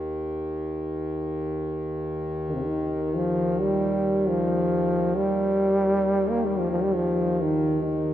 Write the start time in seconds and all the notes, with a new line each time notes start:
Already playing: D#2
2.49 D#3
2.54 C3
2.66 D#3
3.15 F3
3.62 G3
4.29 F3
5.16 G3
6.30 A#3
6.46 G3
6.59 F3
6.70 F3
6.83 G3
6.95 F3
7.43 D#3
7.83 D#3